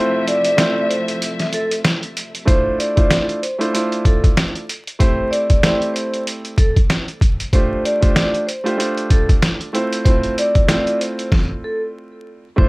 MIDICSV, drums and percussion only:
0, 0, Header, 1, 2, 480
1, 0, Start_track
1, 0, Key_signature, -1, "minor"
1, 0, Tempo, 631579
1, 1881, Time_signature, 4, 2, 24, 8
1, 9643, End_track
2, 0, Start_track
2, 0, Title_t, "Drums"
2, 209, Note_on_c, 9, 42, 82
2, 285, Note_off_c, 9, 42, 0
2, 339, Note_on_c, 9, 42, 61
2, 415, Note_off_c, 9, 42, 0
2, 441, Note_on_c, 9, 38, 112
2, 443, Note_on_c, 9, 40, 90
2, 445, Note_on_c, 9, 42, 102
2, 517, Note_off_c, 9, 38, 0
2, 519, Note_off_c, 9, 40, 0
2, 521, Note_off_c, 9, 42, 0
2, 688, Note_on_c, 9, 42, 69
2, 764, Note_off_c, 9, 42, 0
2, 824, Note_on_c, 9, 42, 47
2, 900, Note_off_c, 9, 42, 0
2, 927, Note_on_c, 9, 42, 101
2, 1003, Note_off_c, 9, 42, 0
2, 1060, Note_on_c, 9, 42, 36
2, 1062, Note_on_c, 9, 38, 37
2, 1136, Note_off_c, 9, 42, 0
2, 1138, Note_off_c, 9, 38, 0
2, 1160, Note_on_c, 9, 42, 79
2, 1236, Note_off_c, 9, 42, 0
2, 1303, Note_on_c, 9, 42, 57
2, 1379, Note_off_c, 9, 42, 0
2, 1402, Note_on_c, 9, 42, 97
2, 1403, Note_on_c, 9, 38, 127
2, 1404, Note_on_c, 9, 40, 101
2, 1478, Note_off_c, 9, 42, 0
2, 1479, Note_off_c, 9, 38, 0
2, 1480, Note_off_c, 9, 40, 0
2, 1542, Note_on_c, 9, 42, 37
2, 1618, Note_off_c, 9, 42, 0
2, 1647, Note_on_c, 9, 42, 79
2, 1723, Note_off_c, 9, 42, 0
2, 1783, Note_on_c, 9, 42, 59
2, 1859, Note_off_c, 9, 42, 0
2, 1881, Note_on_c, 9, 36, 110
2, 1883, Note_on_c, 9, 42, 91
2, 1957, Note_off_c, 9, 36, 0
2, 1959, Note_off_c, 9, 42, 0
2, 2127, Note_on_c, 9, 42, 76
2, 2203, Note_off_c, 9, 42, 0
2, 2258, Note_on_c, 9, 42, 58
2, 2260, Note_on_c, 9, 36, 89
2, 2334, Note_off_c, 9, 42, 0
2, 2336, Note_off_c, 9, 36, 0
2, 2360, Note_on_c, 9, 38, 103
2, 2362, Note_on_c, 9, 40, 83
2, 2364, Note_on_c, 9, 42, 95
2, 2436, Note_off_c, 9, 38, 0
2, 2438, Note_off_c, 9, 40, 0
2, 2440, Note_off_c, 9, 42, 0
2, 2501, Note_on_c, 9, 42, 34
2, 2577, Note_off_c, 9, 42, 0
2, 2608, Note_on_c, 9, 42, 64
2, 2684, Note_off_c, 9, 42, 0
2, 2743, Note_on_c, 9, 42, 45
2, 2819, Note_off_c, 9, 42, 0
2, 2847, Note_on_c, 9, 42, 94
2, 2923, Note_off_c, 9, 42, 0
2, 2981, Note_on_c, 9, 42, 33
2, 3057, Note_off_c, 9, 42, 0
2, 3079, Note_on_c, 9, 36, 90
2, 3080, Note_on_c, 9, 42, 77
2, 3155, Note_off_c, 9, 36, 0
2, 3156, Note_off_c, 9, 42, 0
2, 3221, Note_on_c, 9, 36, 84
2, 3223, Note_on_c, 9, 42, 52
2, 3297, Note_off_c, 9, 36, 0
2, 3299, Note_off_c, 9, 42, 0
2, 3323, Note_on_c, 9, 38, 113
2, 3323, Note_on_c, 9, 42, 91
2, 3325, Note_on_c, 9, 40, 95
2, 3399, Note_off_c, 9, 38, 0
2, 3399, Note_off_c, 9, 42, 0
2, 3401, Note_off_c, 9, 40, 0
2, 3462, Note_on_c, 9, 42, 35
2, 3538, Note_off_c, 9, 42, 0
2, 3568, Note_on_c, 9, 42, 75
2, 3644, Note_off_c, 9, 42, 0
2, 3704, Note_on_c, 9, 42, 56
2, 3780, Note_off_c, 9, 42, 0
2, 3801, Note_on_c, 9, 36, 112
2, 3804, Note_on_c, 9, 42, 92
2, 3877, Note_off_c, 9, 36, 0
2, 3880, Note_off_c, 9, 42, 0
2, 4049, Note_on_c, 9, 42, 75
2, 4125, Note_off_c, 9, 42, 0
2, 4178, Note_on_c, 9, 42, 59
2, 4180, Note_on_c, 9, 36, 84
2, 4254, Note_off_c, 9, 42, 0
2, 4256, Note_off_c, 9, 36, 0
2, 4281, Note_on_c, 9, 38, 108
2, 4282, Note_on_c, 9, 40, 87
2, 4285, Note_on_c, 9, 42, 96
2, 4357, Note_off_c, 9, 38, 0
2, 4358, Note_off_c, 9, 40, 0
2, 4361, Note_off_c, 9, 42, 0
2, 4421, Note_on_c, 9, 42, 35
2, 4497, Note_off_c, 9, 42, 0
2, 4529, Note_on_c, 9, 42, 65
2, 4605, Note_off_c, 9, 42, 0
2, 4663, Note_on_c, 9, 42, 46
2, 4739, Note_off_c, 9, 42, 0
2, 4767, Note_on_c, 9, 42, 91
2, 4843, Note_off_c, 9, 42, 0
2, 4901, Note_on_c, 9, 42, 34
2, 4977, Note_off_c, 9, 42, 0
2, 4999, Note_on_c, 9, 36, 91
2, 5000, Note_on_c, 9, 42, 76
2, 5075, Note_off_c, 9, 36, 0
2, 5076, Note_off_c, 9, 42, 0
2, 5141, Note_on_c, 9, 36, 85
2, 5143, Note_on_c, 9, 42, 55
2, 5217, Note_off_c, 9, 36, 0
2, 5219, Note_off_c, 9, 42, 0
2, 5242, Note_on_c, 9, 42, 91
2, 5243, Note_on_c, 9, 38, 118
2, 5245, Note_on_c, 9, 40, 96
2, 5318, Note_off_c, 9, 42, 0
2, 5319, Note_off_c, 9, 38, 0
2, 5321, Note_off_c, 9, 40, 0
2, 5382, Note_on_c, 9, 42, 33
2, 5458, Note_off_c, 9, 42, 0
2, 5481, Note_on_c, 9, 36, 92
2, 5487, Note_on_c, 9, 42, 73
2, 5557, Note_off_c, 9, 36, 0
2, 5563, Note_off_c, 9, 42, 0
2, 5624, Note_on_c, 9, 42, 56
2, 5700, Note_off_c, 9, 42, 0
2, 5722, Note_on_c, 9, 36, 115
2, 5724, Note_on_c, 9, 42, 94
2, 5798, Note_off_c, 9, 36, 0
2, 5800, Note_off_c, 9, 42, 0
2, 5969, Note_on_c, 9, 42, 77
2, 6045, Note_off_c, 9, 42, 0
2, 6099, Note_on_c, 9, 42, 59
2, 6101, Note_on_c, 9, 36, 86
2, 6175, Note_off_c, 9, 42, 0
2, 6177, Note_off_c, 9, 36, 0
2, 6202, Note_on_c, 9, 38, 112
2, 6203, Note_on_c, 9, 40, 83
2, 6205, Note_on_c, 9, 42, 93
2, 6278, Note_off_c, 9, 38, 0
2, 6279, Note_off_c, 9, 40, 0
2, 6281, Note_off_c, 9, 42, 0
2, 6342, Note_on_c, 9, 42, 35
2, 6418, Note_off_c, 9, 42, 0
2, 6449, Note_on_c, 9, 42, 62
2, 6525, Note_off_c, 9, 42, 0
2, 6584, Note_on_c, 9, 42, 44
2, 6660, Note_off_c, 9, 42, 0
2, 6687, Note_on_c, 9, 42, 95
2, 6763, Note_off_c, 9, 42, 0
2, 6821, Note_on_c, 9, 42, 34
2, 6897, Note_off_c, 9, 42, 0
2, 6919, Note_on_c, 9, 36, 90
2, 6920, Note_on_c, 9, 42, 76
2, 6995, Note_off_c, 9, 36, 0
2, 6996, Note_off_c, 9, 42, 0
2, 7061, Note_on_c, 9, 36, 83
2, 7063, Note_on_c, 9, 42, 53
2, 7137, Note_off_c, 9, 36, 0
2, 7139, Note_off_c, 9, 42, 0
2, 7162, Note_on_c, 9, 42, 89
2, 7163, Note_on_c, 9, 38, 117
2, 7164, Note_on_c, 9, 40, 94
2, 7238, Note_off_c, 9, 42, 0
2, 7239, Note_off_c, 9, 38, 0
2, 7240, Note_off_c, 9, 40, 0
2, 7302, Note_on_c, 9, 42, 35
2, 7378, Note_off_c, 9, 42, 0
2, 7407, Note_on_c, 9, 42, 75
2, 7483, Note_off_c, 9, 42, 0
2, 7543, Note_on_c, 9, 42, 57
2, 7619, Note_off_c, 9, 42, 0
2, 7642, Note_on_c, 9, 36, 114
2, 7643, Note_on_c, 9, 42, 93
2, 7718, Note_off_c, 9, 36, 0
2, 7719, Note_off_c, 9, 42, 0
2, 7778, Note_on_c, 9, 42, 35
2, 7854, Note_off_c, 9, 42, 0
2, 7888, Note_on_c, 9, 42, 79
2, 7964, Note_off_c, 9, 42, 0
2, 8019, Note_on_c, 9, 42, 59
2, 8020, Note_on_c, 9, 36, 88
2, 8095, Note_off_c, 9, 42, 0
2, 8096, Note_off_c, 9, 36, 0
2, 8121, Note_on_c, 9, 38, 107
2, 8122, Note_on_c, 9, 40, 85
2, 8124, Note_on_c, 9, 42, 95
2, 8197, Note_off_c, 9, 38, 0
2, 8198, Note_off_c, 9, 40, 0
2, 8200, Note_off_c, 9, 42, 0
2, 8261, Note_on_c, 9, 42, 35
2, 8337, Note_off_c, 9, 42, 0
2, 8369, Note_on_c, 9, 42, 62
2, 8445, Note_off_c, 9, 42, 0
2, 8504, Note_on_c, 9, 42, 46
2, 8580, Note_off_c, 9, 42, 0
2, 8601, Note_on_c, 9, 36, 108
2, 8604, Note_on_c, 9, 38, 88
2, 8677, Note_off_c, 9, 36, 0
2, 8680, Note_off_c, 9, 38, 0
2, 9562, Note_on_c, 9, 36, 116
2, 9638, Note_off_c, 9, 36, 0
2, 9643, End_track
0, 0, End_of_file